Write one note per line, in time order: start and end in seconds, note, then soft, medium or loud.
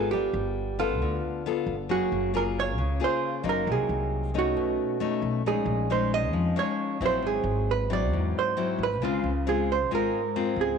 0.00 0.11 G#1 medium
0.00 0.75 B3 medium
0.00 0.75 F4 medium
0.00 0.11 G#4 medium
0.00 0.75 A4 medium
0.11 0.32 G1 medium
0.11 0.99 G3 medium
0.11 0.79 G4 medium
0.33 1.00 G1 medium
0.79 1.41 B3 medium
0.79 1.42 F4 medium
0.79 1.64 F4 medium
0.79 1.42 A4 medium
1.00 1.21 D2 medium
1.00 1.88 D3 soft
1.46 1.74 B3 medium
1.46 1.74 F4 medium
1.46 1.74 A4 medium
1.66 1.89 G1 medium
1.89 2.10 F#1 medium
1.89 2.76 F#3 soft
1.89 2.30 A#3 soft
1.89 2.31 F#4 medium
1.89 2.30 G#4 medium
2.12 2.78 F#1 medium
2.34 2.78 A#3 medium
2.34 2.78 F4 medium
2.34 2.78 G#4 medium
2.34 2.42 A#4 medium
2.60 3.03 C#5 medium
2.78 2.99 C#2 medium
2.78 3.65 C#3 soft
3.00 3.41 A#3 medium
3.00 3.41 F4 medium
3.00 3.41 G#4 medium
3.04 3.48 C5 medium
3.43 3.69 F#1 medium
3.43 4.29 F#3 medium
3.43 4.30 A#3 medium
3.43 4.30 D#4 medium
3.49 3.70 A#4 medium
3.67 3.88 C2 medium
3.67 4.54 C3 soft
3.72 4.38 G#4 medium
3.89 4.55 C2 medium
4.34 4.97 A3 soft
4.34 4.97 C#4 medium
4.34 4.97 D#4 medium
4.38 5.21 F#4 medium
4.55 4.76 B1 medium
4.55 5.43 B2 soft
5.00 5.41 A3 medium
5.00 5.41 C#4 soft
5.00 5.41 D#4 medium
5.22 5.44 B1 medium
5.44 5.65 A#1 medium
5.44 6.32 A#2 soft
5.44 5.86 G#3 soft
5.44 5.87 C#4 soft
5.44 5.87 D#4 soft
5.44 5.92 G#4 medium
5.66 6.32 A#1 medium
5.90 6.53 G#3 medium
5.90 6.53 C#4 soft
5.90 6.53 D#4 medium
5.90 6.13 C5 medium
6.14 6.59 D#5 loud
6.32 6.53 F2 medium
6.32 7.20 F3 soft
6.56 6.97 G#3 medium
6.56 6.97 C#4 medium
6.56 6.97 D#4 medium
6.56 7.03 C#5 medium
7.00 7.23 A#1 medium
7.00 7.86 F#3 soft
7.00 7.87 C4 medium
7.00 7.87 E4 medium
7.06 7.26 C5 medium
7.23 7.43 G#1 medium
7.23 8.09 G#2 soft
7.27 7.70 G#4 medium
7.44 8.11 G#1 medium
7.71 7.92 B4 medium
7.90 8.53 F#3 medium
7.90 8.53 C4 soft
7.90 8.53 E4 medium
7.90 8.37 D5 medium
8.11 8.32 E2 medium
8.11 8.99 G#2 medium
8.39 8.82 C5 medium
8.57 8.85 F#3 soft
8.57 8.85 C4 medium
8.57 8.86 E4 medium
8.78 9.01 G#1 medium
8.83 9.02 B4 medium
9.01 9.22 C#2 medium
9.01 9.88 C#3 medium
9.01 9.30 G#3 soft
9.01 9.30 C4 medium
9.01 9.30 F4 medium
9.01 9.48 F4 medium
9.24 9.89 C#2 medium
9.47 9.75 G#3 medium
9.47 9.75 C4 medium
9.47 9.75 F4 medium
9.47 9.70 G#4 medium
9.72 9.91 C5 medium
9.89 10.10 G#1 medium
9.89 10.77 G#2 soft
9.89 10.19 G#3 soft
9.89 10.19 C4 medium
9.89 10.20 F4 medium
9.95 10.61 A#4 medium
10.36 10.76 G#3 medium
10.36 10.76 C4 medium
10.36 10.76 F4 medium
10.56 10.77 C#2 medium
10.61 10.78 G#4 medium